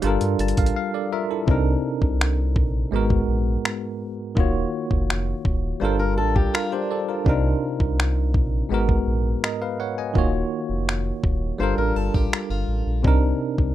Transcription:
0.02 0.17 G1 loud
0.02 1.44 G3 medium
0.02 1.45 D4 medium
0.02 0.75 F4 medium
0.02 0.75 A4 medium
0.02 closed hi-hat medium
0.07 0.76 A#4 medium
0.21 0.36 G2 loud
0.21 closed hi-hat medium
0.39 0.53 G1 loud
0.39 0.57 A5 medium
0.39 closed hi-hat medium
0.48 closed hi-hat medium
0.57 0.72 A1 medium
0.57 0.75 F5 medium
0.57 kick medium
0.57 closed hi-hat soft
0.66 closed hi-hat soft
0.76 0.93 F5 medium
0.94 1.11 A4 medium
0.94 1.11 D5 medium
1.12 1.30 F4 medium
1.12 1.29 A#4 medium
1.12 1.46 E5 medium
1.31 1.65 E4 medium
1.31 1.65 A4 medium
1.46 1.76 C2 loud
1.46 2.89 C3 medium
1.46 2.89 C4 medium
1.46 2.90 D4 medium
1.46 2.91 D#4 medium
1.46 kick loud
1.51 2.91 A#4 medium
2.02 2.57 C2 medium
2.02 kick medium
2.21 finger snap loud
2.56 2.85 A#1 medium
2.56 kick medium
2.91 3.21 G#1 loud
2.91 4.33 G#2 medium
2.91 4.34 G#3 medium
2.91 4.35 B3 medium
2.91 4.35 F#4 medium
2.96 4.36 A#4 medium
3.10 kick medium
3.28 3.57 A#1 loud
3.65 finger snap loud
4.35 4.65 D#1 loud
4.35 5.78 D#3 medium
4.35 5.78 A#3 medium
4.35 5.79 F4 medium
4.35 5.80 F#4 medium
4.35 kick loud
4.40 5.80 C#5 medium
4.91 5.34 F1 medium
4.91 kick medium
5.10 finger snap loud
5.45 5.74 D#1 medium
5.45 kick medium
5.80 6.19 G1 loud
5.80 7.22 G3 medium
5.80 7.23 D4 medium
5.80 6.53 F4 medium
5.80 6.53 A4 medium
5.80 5.99 C5 medium
5.85 6.53 A#4 medium
5.99 6.17 A#4 medium
6.18 6.46 A1 medium
6.18 6.35 A4 medium
6.36 6.54 G4 medium
6.36 kick medium
6.54 6.71 F4 medium
6.54 6.72 F4 medium
6.54 6.71 A#4 medium
6.54 finger snap loud
6.72 7.23 D4 medium
6.72 6.90 G4 medium
6.72 6.89 C5 medium
6.91 7.08 A4 medium
6.91 7.07 D5 medium
7.09 7.43 F4 medium
7.09 7.28 A#4 medium
7.25 7.55 C2 loud
7.25 8.67 C3 medium
7.25 8.68 C4 medium
7.25 8.68 D4 medium
7.25 8.69 D#4 medium
7.25 kick loud
7.29 8.69 A#4 medium
7.80 8.36 C2 medium
7.80 kick medium
8.00 finger snap loud
8.34 8.63 A#1 medium
8.34 kick medium
8.69 8.99 G#1 loud
8.69 10.12 G#2 medium
8.69 10.12 G#3 medium
8.69 10.13 B3 medium
8.69 10.13 F#4 medium
8.74 9.43 A#4 medium
8.89 kick medium
9.07 9.35 A#1 medium
9.44 9.61 A#4 medium
9.44 9.61 D#5 medium
9.44 finger snap loud
9.62 9.79 B4 medium
9.62 9.79 F5 medium
9.80 9.97 C#5 medium
9.80 9.97 F#5 medium
9.98 10.32 D#5 medium
9.98 10.32 G#5 medium
10.14 10.44 D#1 loud
10.14 11.56 D#3 medium
10.14 11.57 A#3 medium
10.14 11.57 F4 medium
10.14 11.58 F#4 medium
10.14 kick loud
10.18 11.59 C#5 medium
10.69 11.12 F1 medium
10.89 finger snap loud
11.24 11.52 D#1 medium
11.24 kick medium
11.58 11.74 G1 loud
11.58 13.01 G3 medium
11.58 13.01 D4 medium
11.58 13.02 F4 medium
11.58 13.03 A4 medium
11.58 11.77 C5 medium
11.63 13.03 A#4 medium
11.78 11.92 A1 medium
11.78 11.96 A#4 medium
11.96 12.10 G1 medium
11.96 12.14 A4 medium
12.14 12.29 A1 medium
12.14 12.50 G4 medium
12.14 kick medium
12.33 finger snap loud
12.50 12.64 G1 medium
12.50 13.02 F4 medium
12.68 12.82 A1 medium
12.86 13.06 A#1 medium
13.03 13.33 C2 loud
13.03 13.75 C3 medium
13.03 13.75 C4 medium
13.03 13.75 D4 medium
13.03 13.75 D#4 medium
13.03 kick loud
13.07 13.75 A#4 medium
13.58 13.75 C2 medium
13.58 kick medium

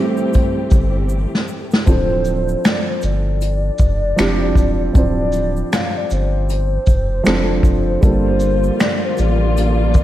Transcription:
0.00 1.83 E3 medium
0.00 1.84 G3 medium
0.00 1.89 G3 medium
0.00 1.84 A3 medium
0.00 1.89 A3 medium
0.00 1.84 C4 medium
0.00 1.87 C4 medium
0.00 1.89 E4 medium
0.00 1.16 G4 medium
0.00 1.84 G4 medium
0.00 1.89 A4 medium
0.00 1.30 C5 medium
0.17 shaker soft
0.33 kick medium
0.33 closed hi-hat medium
0.33 shaker medium
0.71 1.26 G1 medium
0.71 kick medium
0.71 closed hi-hat soft
0.71 shaker soft
1.09 shaker medium
1.35 snare medium
1.48 shaker medium
1.71 snare medium
1.71 shaker soft
1.86 2.55 D1 loud
1.86 3.07 F3 medium
1.86 3.07 C4 medium
1.86 3.07 D4 medium
1.86 3.08 E4 medium
1.86 3.08 A4 medium
1.86 2.61 C5 loud
1.86 kick loud
1.86 closed hi-hat medium
1.86 shaker medium
2.24 shaker soft
2.24 shaker medium
2.49 shaker soft
2.64 2.86 D5 medium
2.64 finger snap medium
2.64 snare loud
2.64 closed hi-hat medium
2.64 shaker medium
2.89 3.02 C5 medium
3.01 3.71 G1 medium
3.01 4.92 D5 loud
3.01 shaker soft
3.01 shaker medium
3.41 closed hi-hat medium
3.41 shaker medium
3.78 4.14 F1 loud
3.78 kick medium
3.78 shaker medium
3.80 shaker soft
4.16 4.53 F1 loud
4.16 4.80 F3 medium
4.16 4.81 C4 medium
4.16 4.81 D4 medium
4.16 4.82 E4 medium
4.16 4.82 G4 loud
4.16 finger snap medium
4.16 snare loud
4.16 closed hi-hat medium
4.16 shaker medium
4.55 4.90 E1 medium
4.55 kick medium
4.55 closed hi-hat soft
4.55 shaker soft
4.55 shaker medium
4.93 5.63 D1 loud
4.93 6.14 F3 medium
4.93 6.15 C4 medium
4.93 6.15 D4 medium
4.93 6.15 E4 medium
4.93 6.16 C5 medium
4.93 5.69 D5 loud
4.93 kick loud
4.93 closed hi-hat medium
4.93 shaker medium
5.32 shaker soft
5.32 shaker medium
5.57 shaker soft
5.72 5.94 F5 medium
5.72 finger snap medium
5.72 snare loud
5.72 closed hi-hat medium
5.72 shaker medium
5.97 6.10 D5 medium
6.10 6.78 G1 medium
6.10 8.00 C5 medium
6.10 shaker soft
6.10 shaker medium
6.49 closed hi-hat medium
6.49 shaker medium
6.86 7.21 F1 medium
6.86 kick medium
6.86 closed hi-hat medium
6.86 shaker medium
6.88 shaker soft
7.24 7.60 F1 medium
7.24 7.88 F3 medium
7.24 7.88 C4 medium
7.24 7.89 D4 medium
7.24 7.89 E4 medium
7.24 7.90 A4 medium
7.24 finger snap medium
7.24 snare loud
7.24 closed hi-hat medium
7.24 shaker medium
7.63 7.98 F1 medium
7.63 kick medium
7.63 shaker soft
7.63 shaker medium
8.01 8.71 G1 loud
8.01 10.04 D3 medium
8.01 10.04 F3 medium
8.01 9.22 G3 medium
8.01 10.04 G3 medium
8.01 9.22 A#3 medium
8.01 10.04 A#3 medium
8.01 9.23 D4 medium
8.01 10.04 F4 medium
8.01 9.23 F4 medium
8.01 9.24 A4 medium
8.01 kick loud
8.01 closed hi-hat medium
8.01 shaker medium
8.05 8.83 C5 loud
8.40 shaker soft
8.40 shaker medium
8.64 shaker soft
8.79 9.02 D5 medium
8.79 finger snap medium
8.79 snare loud
8.79 closed hi-hat medium
8.79 shaker medium
9.05 9.18 C5 medium
9.17 9.97 A1 medium
9.17 10.04 D5 medium
9.17 shaker soft
9.17 shaker medium
9.57 closed hi-hat medium
9.57 shaker medium
9.94 kick medium
9.94 shaker soft
9.96 10.04 G1 loud
9.96 shaker medium

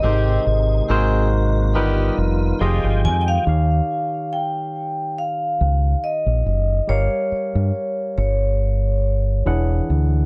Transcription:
0.00 0.37 G#1 loud
0.00 1.73 C3 medium
0.00 0.45 D#3 medium
0.00 0.88 G#3 medium
0.00 0.45 C4 medium
0.00 0.87 D#4 medium
0.00 0.89 D#4 medium
0.00 0.45 G4 medium
0.00 1.52 D#5 medium
0.04 0.89 G4 medium
0.04 0.89 A#4 medium
0.04 0.90 C5 medium
0.47 0.80 G#1 medium
0.89 1.76 G#1 loud
0.89 1.31 D#3 medium
0.89 1.75 G#3 medium
0.89 1.74 A#3 medium
0.89 1.31 C4 medium
0.89 1.74 D#4 medium
0.89 1.74 F#4 medium
0.89 1.75 F#4 medium
0.89 1.31 G#4 medium
0.89 1.75 A#4 medium
0.89 1.76 C5 loud
1.74 2.09 G1 medium
1.74 2.16 D#3 medium
1.74 3.44 D#3 medium
1.74 2.60 G3 medium
1.74 2.16 B3 medium
1.74 2.59 B3 medium
1.74 2.60 D#4 medium
1.74 2.59 F4 medium
1.74 2.60 F4 medium
1.74 2.16 G4 medium
1.74 2.61 A#4 medium
1.74 2.61 B4 medium
2.18 2.51 F1 medium
2.59 2.79 F1 loud
2.59 3.02 C3 medium
2.59 3.46 F3 medium
2.59 3.45 G#3 medium
2.59 3.02 G#3 medium
2.59 3.02 F4 medium
2.59 3.46 F4 medium
2.59 3.46 G4 medium
2.59 3.47 G#4 medium
2.59 3.47 D#5 medium
2.59 3.45 G5 medium
2.84 3.06 G1 medium
3.04 3.37 F2 loud
3.04 3.20 G#5 loud
3.21 3.28 G5 medium
3.28 4.36 F5 loud
3.46 3.80 D#2 medium
3.46 6.85 D#3 medium
3.46 6.85 D#4 medium
3.46 6.85 G4 medium
3.46 6.86 C#5 soft
3.46 6.86 F5 medium
4.33 5.20 G5 medium
5.18 6.06 F5 medium
5.61 5.94 C#2 medium
6.04 6.92 D#5 medium
6.26 6.42 A#1 medium
6.46 6.79 F#1 medium
6.87 7.07 G1 medium
6.87 9.41 G3 medium
6.87 9.42 G4 medium
6.87 9.42 A#4 medium
6.87 8.16 C#5 medium
6.87 9.42 C#5 medium
6.87 9.43 F5 medium
7.32 muted fingered electric bass stroke soft
7.55 7.70 G2 medium
8.18 9.42 G1 medium
8.18 9.85 C#5 medium
9.46 9.80 E1 loud
9.46 10.26 E3 medium
9.46 10.26 D4 medium
9.46 10.26 E4 medium
9.46 10.26 G#4 medium
9.46 10.26 F#5 medium
9.90 10.23 D2 medium

